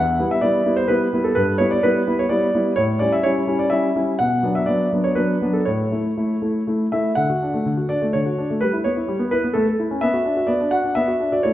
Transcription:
0.00 0.18 E2 soft
0.00 0.27 F#5 medium
0.19 0.36 G3 soft
0.19 0.36 B3 soft
0.19 0.37 E4 soft
0.31 0.43 E5 medium
0.41 0.59 G3 soft
0.41 0.59 B3 soft
0.41 0.60 E4 soft
0.41 0.73 D5 medium
0.66 0.83 G3 soft
0.66 0.83 B3 soft
0.66 0.83 E4 soft
0.77 0.89 C5 medium
0.88 1.06 G3 soft
0.88 1.06 B3 soft
0.88 1.06 E4 soft
0.88 1.20 B4 medium
1.13 1.30 G3 soft
1.13 1.30 B3 soft
1.13 1.30 E4 soft
1.24 1.36 A4 soft
1.35 1.59 G2 soft
1.35 1.57 B4 medium
1.58 1.76 G3 soft
1.58 1.77 B3 soft
1.58 1.77 E4 soft
1.58 1.71 C#5 medium
1.71 1.83 D5 medium
1.83 2.00 G3 soft
1.83 2.01 B3 soft
1.83 2.01 E4 soft
1.83 2.15 B4 medium
2.07 2.24 G3 soft
2.07 2.24 B3 soft
2.07 2.24 E4 soft
2.19 2.30 C#5 medium
2.29 2.47 G3 soft
2.29 2.48 B3 soft
2.29 2.48 E4 soft
2.29 2.73 D5 medium
2.55 2.71 G3 soft
2.55 2.71 B3 soft
2.55 2.71 E4 soft
2.76 3.00 A2 soft
2.76 2.98 C#5 medium
2.99 3.17 G3 soft
2.99 3.18 C#4 soft
2.99 3.18 E4 soft
2.99 3.12 D5 medium
3.12 3.24 E5 medium
3.23 3.42 G3 soft
3.23 3.42 C#4 soft
3.23 3.42 E4 soft
3.23 3.56 C#5 medium
3.47 3.64 G3 soft
3.47 3.65 C#4 soft
3.47 3.65 E4 soft
3.59 3.71 D5 medium
3.70 3.88 G3 soft
3.70 3.89 C#4 soft
3.70 3.89 E4 soft
3.70 3.99 E5 medium
3.96 4.13 G3 soft
3.96 4.13 C#4 soft
3.96 4.13 E4 soft
4.19 4.43 B2 soft
4.19 4.52 F#5 medium
4.43 4.61 F#3 soft
4.43 4.61 B3 soft
4.43 4.61 D4 soft
4.55 4.68 E5 medium
4.66 4.85 F#3 soft
4.66 4.86 B3 soft
4.66 4.86 D4 soft
4.66 4.89 D5 medium
4.93 5.10 F#3 soft
4.93 5.10 B3 soft
4.93 5.11 D4 soft
5.04 5.17 C#5 medium
5.15 5.34 F#3 soft
5.15 5.35 B3 soft
5.15 5.35 D4 soft
5.15 5.49 B4 medium
5.42 5.60 F#3 soft
5.42 5.60 B3 soft
5.42 5.60 D4 soft
5.53 5.66 A4 soft
5.65 5.91 A2 soft
5.65 6.67 C#5 soft
5.92 6.10 A3 soft
5.92 6.10 E4 soft
6.17 6.35 A3 soft
6.17 6.36 E4 soft
6.42 6.60 A3 soft
6.42 6.61 E4 soft
6.67 6.85 A3 soft
6.67 6.86 E4 soft
6.92 7.10 A3 soft
6.92 7.11 E4 soft
6.92 7.17 E5 medium
7.15 7.29 D3 soft
7.15 7.89 F#5 medium
7.30 7.42 F#4 soft
7.42 7.55 D4 soft
7.54 7.66 A3 soft
7.65 7.77 D3 soft
7.77 7.90 F#4 soft
7.89 8.02 D4 soft
7.89 8.04 D5 medium
8.02 8.14 A3 soft
8.13 8.26 D3 soft
8.13 8.61 C#5 medium
8.26 8.38 F#4 soft
8.38 8.50 D4 soft
8.50 8.62 A3 soft
8.61 8.73 G3 soft
8.61 8.75 B4 medium
8.73 8.86 E4 soft
8.84 8.97 B3 soft
8.84 9.27 C#5 medium
8.97 9.09 E4 soft
9.08 9.20 G3 soft
9.19 9.32 B3 soft
9.31 9.44 E4 soft
9.31 9.45 B4 medium
9.44 9.55 B3 soft
9.53 9.66 A3 soft
9.53 9.65 A4 medium
9.67 9.79 A4 soft
9.80 9.91 E4 soft
9.91 10.02 C#4 soft
10.01 10.14 B3 soft
10.01 10.48 E5 medium
10.13 10.26 F#4 soft
10.25 10.37 D4 soft
10.37 10.49 F#4 soft
10.47 10.60 B3 soft
10.47 10.71 D5 medium
10.61 10.73 D4 soft
10.71 10.85 F#4 soft
10.71 10.96 F#5 medium
10.84 10.97 D4 soft
10.95 11.08 B3 soft
10.95 11.32 E5 medium
11.08 11.21 F#4 soft
11.20 11.33 D4 soft
11.32 11.45 F#4 soft
11.32 11.45 D5 soft
11.43 11.53 A3 soft
11.43 11.53 E4 soft
11.43 11.53 A4 soft
11.43 11.53 C#5 medium

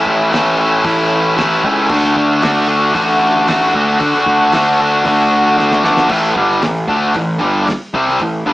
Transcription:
0.00 0.30 A2 loud
0.00 0.31 E3 loud
0.00 0.32 A3 loud
0.00 0.32 C#4 loud
0.00 0.33 E4 loud
0.06 0.81 A1 loud
0.06 kick medium
0.31 0.57 A2 medium
0.31 0.58 E3 medium
0.31 0.59 A3 loud
0.31 0.59 C#4 medium
0.31 0.59 E4 medium
0.31 snare loud
0.31 open hi-hat medium
0.58 0.82 A2 medium
0.58 0.84 E3 medium
0.58 0.84 A3 medium
0.58 0.84 C#4 medium
0.58 0.85 E4 loud
0.83 1.64 A1 medium
0.83 1.35 A2 loud
0.83 1.36 E3 loud
0.83 1.36 A3 loud
0.83 1.36 C#4 loud
0.83 1.38 E4 loud
0.83 kick loud
0.83 open hi-hat medium
1.36 1.63 A2 medium
1.36 1.64 E3 medium
1.36 1.64 A3 medium
1.36 1.64 C#4 medium
1.36 1.66 E4 loud
1.36 snare loud
1.36 open hi-hat medium
1.64 1.89 C#2 medium
1.64 1.89 A2 medium
1.64 1.89 E3 medium
1.64 1.89 A3 medium
1.64 1.90 C#4 medium
1.64 1.90 E4 loud
1.64 kick medium
1.89 2.15 D2 loud
1.89 2.41 D3 loud
1.89 2.42 A3 loud
1.89 2.42 D4 loud
1.89 2.43 F#4 loud
1.89 kick loud
1.89 crash loud
2.04 snare soft
2.16 2.92 D2 medium
2.16 kick loud
2.42 2.67 D3 medium
2.42 2.67 A3 medium
2.42 2.67 D4 medium
2.42 2.68 F#4 loud
2.42 snare loud
2.42 open hi-hat medium
2.67 2.93 D3 medium
2.67 2.94 A3 medium
2.67 2.94 D4 medium
2.67 2.94 F#4 medium
2.94 3.70 A1 medium
2.94 3.46 D3 loud
2.94 3.48 A3 loud
2.94 3.47 D4 loud
2.94 3.47 F#4 loud
2.94 kick loud
2.94 open hi-hat medium
3.47 3.73 D3 medium
3.47 3.74 A3 medium
3.47 3.74 D4 medium
3.47 3.75 F#4 loud
3.47 snare loud
3.47 open hi-hat medium
3.74 3.99 D2 loud
3.74 3.98 D3 loud
3.74 3.98 A3 medium
3.74 3.99 D4 medium
3.74 3.99 F#4 loud
3.74 kick medium
3.99 4.52 D3 medium
3.99 4.13 D3 loud
3.99 4.53 A3 loud
3.99 4.53 D4 loud
3.99 4.53 F#4 loud
3.99 kick loud
3.99 open hi-hat medium
4.15 snare soft
4.26 5.01 D2 loud
4.26 kick loud
4.52 4.79 D3 medium
4.52 4.79 A3 medium
4.52 4.80 D4 medium
4.52 4.80 F#4 medium
4.52 snare loud
4.52 open hi-hat medium
4.80 5.04 D3 medium
4.80 5.05 A3 medium
4.80 5.05 D4 medium
4.80 5.06 F#4 medium
5.05 5.86 D2 medium
5.05 5.55 D3 loud
5.05 5.57 A3 loud
5.05 5.56 D4 loud
5.05 5.57 F#4 loud
5.05 kick loud
5.05 open hi-hat medium
5.57 5.82 D3 medium
5.57 5.83 A3 medium
5.57 5.84 D4 loud
5.57 5.84 F#4 loud
5.57 snare medium
5.72 snare medium
5.84 6.09 A#1 medium
5.84 6.09 D3 medium
5.84 6.08 A3 loud
5.84 6.09 D4 medium
5.84 6.09 F#4 medium
5.84 snare medium
5.97 snare loud
6.08 6.34 A1 loud
6.08 6.35 A2 medium
6.08 6.36 E3 loud
6.08 6.35 A3 loud
6.08 kick loud
6.08 crash loud
6.35 6.61 G1 medium
6.35 6.62 G2 loud
6.35 6.62 D3 loud
6.35 6.63 G3 loud
6.35 kick loud
6.50 snare soft
6.62 6.87 A1 medium
6.62 6.84 A2 medium
6.62 6.85 E3 medium
6.62 snare loud
6.62 open hi-hat medium
6.88 7.13 D2 medium
6.88 7.14 D3 medium
6.88 7.15 A3 medium
6.88 7.15 D4 medium
6.88 kick loud
7.14 7.40 A1 medium
7.14 7.36 A2 medium
7.14 7.37 E3 medium
7.14 kick loud
7.14 open hi-hat medium
7.39 7.66 G1 medium
7.39 7.66 G2 medium
7.39 7.67 D3 loud
7.39 7.67 G3 loud
7.67 muted distorted electric guitar stroke medium
7.67 muted picked electric bass stroke soft
7.67 snare loud
7.67 open hi-hat medium
7.94 8.19 C2 loud
7.94 8.20 C3 medium
7.94 8.20 G3 loud
7.94 8.20 C4 loud
7.94 kick loud
8.08 snare soft
8.19 8.45 A1 medium
8.19 8.42 A2 medium
8.19 8.42 E3 medium
8.19 kick medium
8.19 open hi-hat medium
8.46 8.53 G1 medium
8.46 8.53 G2 loud
8.46 8.53 D3 loud
8.46 8.53 G3 loud

